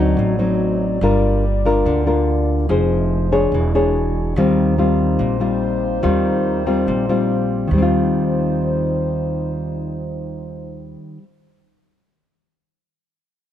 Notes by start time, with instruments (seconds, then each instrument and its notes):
Already playing: upright bass D2, nylon-string guitar D3 F#3 C4 D#4, french horn section C4 F#4 D5 D#5
0.17 upright bass A1, nylon-string guitar A2
0.39 nylon-string guitar F#3 C4 D#4
1.01 upright bass G1, nylon-string guitar G3 D4 F4 A#4, french horn section A#3 F4 G4
1.66 nylon-string guitar D4 F4 A#4
1.85 upright bass D2, nylon-string guitar D3
2.07 nylon-string guitar D4 F4 A#4
2.69 upright bass F1, nylon-string guitar F3 D#4 G#4 C5, french horn section G#3 D#4 C5
3.32 nylon-string guitar D4 G#4 C#5
3.52 upright bass E1, nylon-string guitar E3, french horn section D4 F#4 C#5
3.75 nylon-string guitar D4 G#4 C#5
4.36 upright bass D#2, nylon-string guitar D#3 G3 C4 F4, french horn section G3 D#4 F4 C5
4.78 nylon-string guitar G3 C4 F4
5.19 upright bass A#1, nylon-string guitar A#2
5.40 nylon-string guitar G3 C4 F4
6.03 upright bass D#2, nylon-string guitar D#3 G3 C4 F4
6.66 nylon-string guitar G3 C4 F4
6.87 upright bass A#1, nylon-string guitar A#2
7.09 nylon-string guitar G3 C4 F4
7.68 upright bass D#2, nylon-string guitar D#3, french horn section G3 D#4 F4 C5
7.73 nylon-string guitar G3
7.78 nylon-string guitar C4
7.82 nylon-string guitar F4